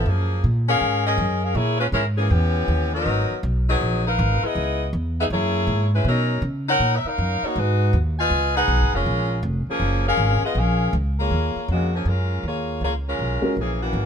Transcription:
0.06 upright bass F#2, saxophone section F3 A#3 C#4 G#4
0.44 upright bass A#2
0.68 saxophone section C#4 G#4 A#4 F5
0.81 upright bass G#2
1.07 saxophone section C#4 G#4 A#4 D#5
1.18 upright bass F#2
1.43 saxophone section C#4 G#4 A#4 F5
1.55 upright bass A#2, saxophone section A#3 E4 G#4 C#5
1.80 saxophone section G#3 C#4 F4 B4
1.92 upright bass G#2, saxophone section G#3 C#4 E4 A#4
2.18 saxophone section E3 A#3 C#4 G#4
2.30 upright bass E2, saxophone section E3 B3 C#4 G4
2.68 upright bass D#2
2.94 saxophone section F#3 B3 D#4 A#4
3.06 upright bass G#1
3.30 muted upright bass stroke
3.43 upright bass B1
3.69 saxophone section F#3 B3 D#4 G#4
3.81 upright bass A#1
4.07 saxophone section D#4 A#4 B4 F5
4.19 upright bass G#1
4.44 saxophone section B3 E4 G#4 D#5
4.55 upright bass C#2
4.93 upright bass E2
5.20 saxophone section B3 D#4 G#4 E5
5.30 upright bass F#2, saxophone section A#3 E4 G#4 C#5
5.67 upright bass G#2
5.95 saxophone section G#3 C#4 E4 B4
6.05 upright bass B2, saxophone section F#3 C#4 D#4 A#4
6.42 upright bass C#3
6.69 saxophone section D#4 A#4 C#5 F#5
6.80 upright bass A#2
6.96 saxophone section E5
7.05 saxophone section D#4 A#4 C#5 F5, muted upright bass stroke
7.18 upright bass F#2
7.43 saxophone section A#3 D#4 F#4 C#5, muted upright bass stroke
7.56 upright bass G#2, saxophone section G#3 D#4 F#4 B4
7.93 upright bass D#2
8.19 saxophone section F4 B4 D#5 G#5
8.30 upright bass C#2
8.57 saxophone section D#4 G#4 B4 F#5
8.68 upright bass B1
8.80 upright bass G#1
8.93 upright bass F1, saxophone section G#3 C#4 F4 A#4
9.06 upright bass A#1
9.43 upright bass F1
9.67 saxophone section F3 A#3 C#4 G#4, muted upright bass stroke
9.80 upright bass F#1
10.07 saxophone section C#4 G#4 A#4 F5
10.17 upright bass G#1
10.45 saxophone section B3 F4 G#4 D#5
10.55 upright bass A#1, saxophone section G#4
10.59 saxophone section C#4 A#4 F5
10.93 upright bass C#2
11.20 saxophone section A#3 F4 G#4 C#5
11.31 upright bass D#2
11.56 muted upright bass stroke
11.68 upright bass F2, saxophone section C#3 G#3 A#3 F#4
11.95 saxophone section F3 A#3 C#4 G#4
12.05 upright bass F#2, saxophone section G#3 C#4 F4 A#4
12.43 upright bass D#2, saxophone section A#3 F4 G#4 C#5
12.81 upright bass C#2, saxophone section A#3 F4 G#4 C#5
13.09 saxophone section G#3 C#4 F4 A#4
13.19 upright bass B1
13.42 grand piano G#3 C#4 F#4 A#4, muted upright bass stroke
13.57 upright bass A#1, saxophone section E3 A#3 C#4 G#4
13.83 saxophone section E3 A#3 C#4 F#4
13.93 upright bass G#1

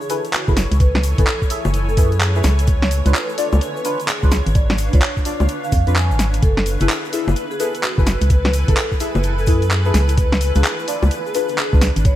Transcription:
Already playing: ambient pad E4 A4 B4 G#5, string machine C#5
0.01 vibraphone G#4, shaker
0.10 synth stab E4 G#4 A4 B4, open hi-hat, shaker
0.25 closed hi-hat, shaker
0.33 vibraphone F#4, clap, closed hi-hat, shaker
0.48 fm bass F#1, synth stab E4 G#4 A4 B4, kick, shaker
0.57 snare, open hi-hat, shaker
0.71 fm bass C#2, closed hi-hat, shaker
0.80 vibraphone B4, kick, closed hi-hat, shaker
0.95 snare, high bongo, shaker
1.03 open hi-hat, shaker
1.18 fm bass F#1, synth stab E4 G#4 A4 B4, vibraphone A4, kick, closed hi-hat, shaker
1.27 clap, closed hi-hat, shaker
1.42 kick, shaker
1.50 synth stab E4 G#4 A4 E5, open hi-hat, shaker
1.65 fm bass F#1, high bongo, shaker
1.74 closed hi-hat, shaker
1.89 vibraphone A4, shaker
1.97 fm bass F#2, synth stab E4 G#4 A4 B4, kick, open hi-hat, shaker
2.12 closed hi-hat, shaker
2.21 vibraphone G#4, clap, closed hi-hat, shaker
2.35 synth stab E4 G#4 A4 B4, shaker
2.44 fm bass C#2, snare, open hi-hat, shaker
2.59 closed hi-hat, shaker
2.67 ambient pad D4, vibraphone C#5, kick, closed hi-hat, shaker
2.82 snare, shaker
2.91 open hi-hat, shaker
3.06 fm bass C#2, synth stab D4 F4 B4, vibraphone B4, closed hi-hat, shaker
3.14 clap, closed hi-hat, shaker
3.24 ambient pad F5
3.29 shaker
3.38 synth stab D4 F4 D5, open hi-hat, shaker
3.53 fm bass C#2, high bongo, shaker
3.61 closed hi-hat, shaker
3.76 vibraphone B4, shaker
3.85 synth stab D4 F4 B4, open hi-hat, shaker
4.00 closed hi-hat, shaker
4.08 vibraphone G#4, clap, closed hi-hat, shaker
4.23 fm bass C#2, synth stab D4 F4 B4, kick, shaker
4.31 snare, open hi-hat, shaker
4.46 fm bass G#1, closed hi-hat, shaker
4.55 vibraphone D5, kick, closed hi-hat, shaker
4.69 snare, high bongo, shaker
4.78 open hi-hat, shaker
4.93 fm bass C#2, synth stab D4 F4 B4, vibraphone C#5, kick, closed hi-hat, shaker
5.01 clap, closed hi-hat, shaker
5.17 kick, shaker
5.25 synth stab D4 F4 D5, open hi-hat, shaker
5.40 fm bass C#2, high bongo, shaker
5.48 closed hi-hat, shaker
5.63 vibraphone F5, shaker
5.72 fm bass F2, kick, open hi-hat, shaker
5.87 fm bass F2, synth stab D4 F4 B4, closed hi-hat, shaker
5.95 vibraphone G#5, clap, closed hi-hat, shaker
6.10 fm bass G#1, shaker
6.19 snare, open hi-hat, shaker
6.34 closed hi-hat, shaker
6.42 fm bass F#1, ambient pad E4, vibraphone A4, string machine B4, kick, closed hi-hat, shaker
6.48 ambient pad A4
6.57 snare, shaker
6.66 open hi-hat, shaker
6.80 fm bass F#1, synth stab E4 G#4 A4 B4, vibraphone G#4, closed hi-hat, shaker
6.89 clap, closed hi-hat, shaker
7.05 ambient pad G#5, shaker
7.13 synth stab E4 G#4 A4 E5, open hi-hat, shaker
7.28 fm bass F#1, high bongo, shaker
7.36 closed hi-hat, shaker
7.51 vibraphone G#4, shaker
7.60 synth stab E4 G#4 A4 B4, open hi-hat, shaker
7.75 closed hi-hat, shaker
7.83 vibraphone F#4, clap, closed hi-hat, shaker
7.98 fm bass F#1, synth stab E4 G#4 A4 B4, kick, shaker
8.06 snare, open hi-hat, shaker
8.21 fm bass C#2, closed hi-hat, shaker
8.30 vibraphone B4, kick, closed hi-hat, shaker
8.45 snare, high bongo, shaker
8.53 open hi-hat, shaker
8.68 fm bass F#1, synth stab E4 G#4 A4 B4, vibraphone A4, kick, closed hi-hat, shaker
8.77 clap, closed hi-hat, shaker
8.92 kick, shaker
9.00 synth stab E4 G#4 A4 E5, open hi-hat, shaker
9.15 fm bass F#1, high bongo, shaker
9.23 closed hi-hat, shaker
9.38 vibraphone A4, shaker
9.47 fm bass F#2, synth stab E4 G#4 A4 B4, kick, open hi-hat, shaker
9.62 closed hi-hat, shaker
9.71 vibraphone G#4, clap, closed hi-hat, shaker
9.85 synth stab E4 G#4 A4 B4, shaker
9.94 fm bass C#2, snare, open hi-hat, shaker
10.09 closed hi-hat, shaker
10.17 ambient pad D4, vibraphone B4, kick, closed hi-hat, shaker
10.32 snare, shaker
10.41 open hi-hat, shaker
10.55 fm bass C#2, synth stab D4 F4 B4, vibraphone G#4, closed hi-hat, shaker
10.64 clap, closed hi-hat, shaker
10.79 shaker
10.88 synth stab D4 F4 D5, open hi-hat, shaker
11.03 fm bass C#2, high bongo, shaker
11.07 ambient pad F5, closed hi-hat, shaker
11.26 vibraphone G#4, shaker
11.34 synth stab D4 F4 B4, open hi-hat, shaker
11.48 closed hi-hat, shaker
11.58 vibraphone G#4, clap, closed hi-hat, shaker
11.73 fm bass C#2, synth stab D4 F4 B4, kick, shaker
11.81 snare, open hi-hat, shaker
11.96 fm bass G#1, closed hi-hat, shaker
12.05 vibraphone C#5, kick, closed hi-hat, shaker

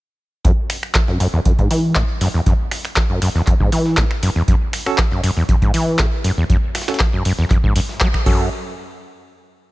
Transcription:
0.45 acid bass F#2, kick, closed hi-hat
0.70 finger snap, open hi-hat
0.83 finger snap
0.95 kick, snare, clap, closed hi-hat
1.08 acid bass F#2, snare
1.20 acid bass F#2, closed hi-hat, open hi-hat
1.33 acid bass E2
1.45 acid bass F#2, kick, closed hi-hat
1.59 acid bass G#2, kick, closed hi-hat
1.71 acid bass E3, closed hi-hat, open hi-hat
1.95 acid bass F#2, kick, snare, clap, closed hi-hat
2.21 acid bass F#2, snare, closed hi-hat, open hi-hat
2.34 acid bass E2
2.46 acid bass F#2, kick, closed hi-hat
2.71 finger snap, snare, closed hi-hat, open hi-hat
2.85 finger snap, closed hi-hat
2.96 kick, snare, clap, closed hi-hat
3.10 acid bass F#2
3.22 acid bass F#2, closed hi-hat, open hi-hat
3.35 acid bass E2, snare
3.47 acid bass F#2, kick, clap, closed hi-hat
3.60 acid bass G#2, kick
3.72 acid bass E3, closed hi-hat, open hi-hat
3.86 snare
3.97 acid bass F#2, kick, snare, clap, closed hi-hat
4.11 finger snap, snare
4.23 acid bass F#2, closed hi-hat, open hi-hat
4.36 acid bass E2
4.48 acid bass F#2, kick, closed hi-hat
4.73 finger snap, open hi-hat
4.86 tine electric piano C#4 F#4 A4, finger snap
4.98 kick, snare, clap, closed hi-hat
5.12 acid bass F#2, snare
5.23 acid bass F#2, closed hi-hat, open hi-hat
5.37 acid bass E2
5.49 acid bass F#2, kick, closed hi-hat
5.62 acid bass G#2, kick, closed hi-hat
5.74 acid bass E3, closed hi-hat, open hi-hat
5.99 acid bass F#2, kick, snare, clap, closed hi-hat
6.24 acid bass F#2, snare, closed hi-hat, open hi-hat
6.38 acid bass E2
6.50 acid bass F#2, kick, closed hi-hat
6.75 finger snap, snare, closed hi-hat, open hi-hat
6.82 snare, closed hi-hat
6.88 tine electric piano C#4 F#4 A4, finger snap, snare, closed hi-hat
6.94 snare, closed hi-hat
6.99 kick, snare, clap, closed hi-hat
7.13 acid bass F#2
7.25 acid bass F#2, closed hi-hat, open hi-hat
7.39 acid bass E2, snare
7.50 acid bass F#2, kick, clap, closed hi-hat
7.64 acid bass G#2, kick
7.76 acid bass F#2, closed hi-hat, open hi-hat
7.89 snare
8.00 acid bass F#3, kick, snare, clap, closed hi-hat
8.14 finger snap, kick, snare
8.26 acid bass F#2, tine electric piano C#4 F#4 A4, kick, crash

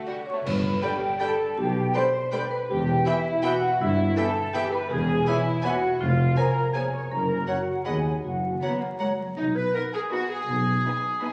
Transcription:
Already playing: french horn section A3 A4
0.07 violin section G3 F#4
0.26 marimba C#5, french horn section C#5, flute section C#6
0.35 violin section A3
0.46 double bass section G1, tuba G1, cello section G2, marimba B4, french horn section B4, flute section B5, concert bass drum, crash
0.82 bassoon D3, viola section G3, marimba G4, french horn section G4, violin section D5 G5, clarinet G5, flute section G5, oboe B5
1.20 bassoon D3, viola section G3, marimba A4, french horn section A4, violin section D5 G5, clarinet G5, flute section A5, oboe B5
1.57 tuba B1, double bass section B1, cello section B2, marimba G4, french horn section G4, flute section G5
1.94 bassoon D3, viola section G3, french horn section C5, marimba C5, violin section D5 G5, clarinet G5, oboe B5, flute section C6
2.31 bassoon D3, viola section G3, marimba B4, french horn section B4, violin section D5 G5, clarinet G5, flute section B5, oboe B5
2.51 french horn section B4, marimba B4, flute section B5
2.69 tuba E1, double bass section E1, cello section E2, french horn section G4, marimba G4, flute section G5
3.06 bassoon E3, viola section B3, french horn section E4, marimba E4, violin section E5 G5, flute section E5, clarinet E5, oboe B5
3.42 bassoon E3, viola section B3, french horn section F#4, marimba F#4, violin section E5 G5, clarinet E5, flute section F#5, oboe B5
3.79 double bass section G1, tuba G1, cello section G2, french horn section E4, marimba E4, flute section E5
4.16 bassoon E3, viola section B3, french horn section A4, marimba A4, violin section E5 G5, clarinet E5, flute section A5, oboe B5
4.53 bassoon E3, viola section B3, marimba G4, french horn section G4, violin section E5 G5, clarinet E5, flute section G5, oboe B5
4.72 french horn section B4, marimba B4, flute section B5
4.90 tuba E1, double bass section E1, cello section E2, french horn section G#4, marimba G#4, flute section G#5
5.26 bassoon E3, viola section B3, marimba E4, french horn section E4, violin section C#5 G#5, clarinet C#5, flute section E5, oboe B5
5.62 bassoon E3, viola section B3, marimba F#4, french horn section F#4, violin section C#5 G#5, clarinet C#5, flute section F#5, oboe B5
6.01 double bass section F1, tuba F1, cello section F2, marimba F4, french horn section F4, flute section F5
6.36 bassoon F3, viola section B3, french horn section A#4, marimba A#4, violin section C#5 G#5, clarinet C#5, oboe G#5, flute section A#5
6.73 bassoon F3, viola section B3, marimba G#4, french horn section G#4, violin section C#5 G#5, clarinet C#5, oboe G#5, flute section G#5
6.93 marimba C#5, french horn section C#5, flute section C#6
7.10 double bass section F#1, tuba F#1, cello section F#2, marimba A#4, french horn section A#4, flute section A#5
7.47 bassoon F#3, viola section C#4, french horn section F#4, marimba F#4, clarinet C#5, violin section C#5 F#5, oboe F#5, flute section F#5
7.85 double bass section D#2, tuba D#2, cello section D#2, bassoon F#3, viola section B3, marimba G#4, french horn section G#4, violin section D#5 F#5, clarinet D#5, flute section G#5, oboe B5
8.23 double bass section F#1, tuba F#1, cello section F#2, french horn section F#4, marimba F#4, flute section F#5
8.61 bassoon F#3, viola section A#3, cello section B3, violin section C#5 F#5, clarinet C#5, oboe A#5
8.81 cello section A#3
8.99 bassoon F#3, cello section G#3, viola section A#3, violin section C#5 F#5, clarinet C#5, oboe A#5
9.19 cello section F#3
9.37 double bass section B1, tuba B1, cello section B2, violin section D#4, clarinet D#4
9.55 violin section B4, clarinet B4
9.74 viola section B3 D#4, violin section A#4 F#5 B5, clarinet A#4
9.93 violin section G#4, clarinet G#4
10.11 viola section B3 D#4, violin section F#4 F#5 B5, clarinet F#4
10.30 clarinet G#4, violin section G#4
10.48 double bass section B1, tuba B1, cello section B2
10.86 viola section B3 D#4, violin section G#5 B5
11.22 viola section B3 D#4, violin section G#5 B5

